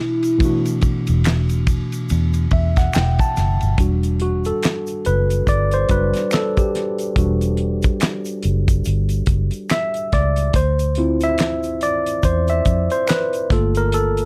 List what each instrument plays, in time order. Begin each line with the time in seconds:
Already playing: tine electric piano B2 E3 A3 D4 F#4
0.00 soft synth lead E4
0.23 ride, shaker
0.38 tine electric piano B2 E3 A3, kick, ride, shaker
0.43 tine electric piano D4 F#4
0.65 ride, shaker
0.81 muted fingered electric bass stroke, kick, ride, shaker
1.07 fingered electric bass E1, ride, shaker
1.24 finger snap, snare, clap, ride, shaker
1.49 ride, shaker
1.67 kick, ride, shaker
1.92 ride, shaker
2.09 fingered electric bass E2, ride, shaker
2.34 ride, shaker
2.51 fingered electric bass E2, tine electric piano E5, kick, ride
2.76 tine electric piano F#5, kick, snare, ride, shaker
2.93 fingered electric bass E1, tine electric piano G5, finger snap, snare, clap, ride, shaker
3.19 tine electric piano A5, kick, ride, shaker
3.37 fingered electric bass F#1, snare, ride, shaker
3.61 fingered electric bass G1, ride, shaker
3.78 fingered electric bass E1, tine electric piano G3 D4 F#4, kick, closed hi-hat, shaker
4.03 closed hi-hat, shaker
4.20 tine electric piano F#4, closed hi-hat
4.45 tine electric piano A4, closed hi-hat, shaker
4.63 finger snap, snare, clap, closed hi-hat, shaker
4.87 closed hi-hat, shaker
5.05 fingered electric bass F#1, tine electric piano B4, closed hi-hat, shaker
5.30 closed hi-hat, shaker
5.47 fingered electric bass G1, tine electric piano D5, kick, closed hi-hat, shaker
5.71 tine electric piano C5, closed hi-hat, shaker
5.89 fingered electric bass F#1, tine electric piano G3 D4 F#4 B4, kick, closed hi-hat, shaker
6.14 snare, closed hi-hat, shaker
6.31 tine electric piano A4, finger snap, snare, clap, closed hi-hat, shaker
6.57 tine electric piano G4, kick, closed hi-hat, shaker
6.75 snare, closed hi-hat
6.99 closed hi-hat, shaker
7.16 fingered electric bass E1, tine electric piano G3 D4 F#4, kick, closed hi-hat, shaker
7.41 closed hi-hat, shaker
7.57 closed hi-hat
7.82 kick, closed hi-hat, shaker
8.00 finger snap, snare, clap, closed hi-hat, shaker
8.25 closed hi-hat, shaker
8.43 fingered electric bass F#1, closed hi-hat, shaker
8.68 kick, closed hi-hat, shaker
8.85 fingered electric bass G1, closed hi-hat, shaker
9.09 closed hi-hat, shaker
9.26 fingered electric bass F#1, kick, closed hi-hat, shaker
9.51 closed hi-hat, shaker
9.70 tine electric piano E5, finger snap, snare, clap, closed hi-hat, shaker
9.94 closed hi-hat, shaker
10.12 fingered electric bass C#2, tine electric piano D5, kick, snare, closed hi-hat
10.36 closed hi-hat, shaker
10.53 fingered electric bass D2, tine electric piano C5, kick, closed hi-hat, shaker
10.79 closed hi-hat, shaker
10.95 tine electric piano C4 E4 F4, closed hi-hat
11.21 tine electric piano E5, closed hi-hat, shaker
11.38 finger snap, snare, clap, closed hi-hat, shaker
11.63 closed hi-hat, shaker
11.81 tine electric piano D5, closed hi-hat, shaker
12.06 closed hi-hat, shaker
12.23 fingered electric bass E2, tine electric piano C5, kick, closed hi-hat, shaker
12.48 tine electric piano E5, closed hi-hat, shaker
12.65 fingered electric bass F2, kick, closed hi-hat, shaker
12.90 tine electric piano C5, closed hi-hat, shaker
13.07 tine electric piano B4, finger snap, snare, clap, closed hi-hat, shaker
13.33 closed hi-hat, shaker
13.50 fingered electric bass G1, tine electric piano A3 A#3 F4 A4, kick, snare, closed hi-hat
13.75 tine electric piano A#4, closed hi-hat, shaker
13.92 tine electric piano A4, closed hi-hat, shaker
14.17 closed hi-hat, shaker